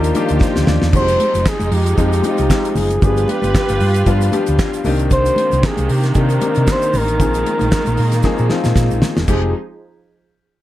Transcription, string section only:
0.00 0.92 D#3 medium
0.00 0.92 A#3 medium
0.00 0.92 F4 medium
0.00 0.92 G4 medium
0.92 2.99 F3 medium
0.92 2.99 G#3 loud
0.92 2.99 D#4 medium
3.01 4.82 G3 medium
3.01 4.83 F4 medium
3.01 4.82 B4 loud
4.84 7.17 C3 medium
4.84 9.24 D#3 loud
4.84 7.16 A#3 medium
7.19 9.26 G#3 medium
7.19 9.26 A#3 medium
9.28 9.52 F3 medium
9.28 9.52 D#4 medium
9.28 9.52 G#4 medium

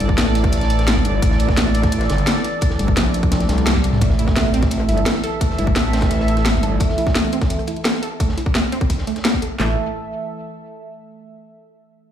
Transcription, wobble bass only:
0.00 0.16 G1 medium
0.18 0.91 A1 loud
0.91 1.21 G#1 loud
1.22 2.08 A1 loud
2.79 2.95 G1 medium
4.01 4.87 A1 loud
4.89 5.05 G1 loud
5.58 5.75 G1 medium
5.76 6.49 A1 loud
6.49 6.79 G#1 loud
9.60 9.76 A1 loud

